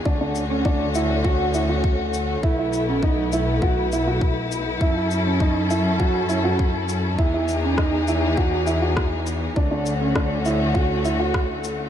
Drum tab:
SH |-x-x-x-x|-x-x-x-x|-x-x-x-x|-x-x-x-x|
SD |--------|--------|--------|--r---r-|
BD |o-o-o-o-|o-o-o-o-|o-o-o-o-|o-o-o-o-|

SH |-x-x-x-x|
SD |--r---r-|
BD |o-o-o-o-|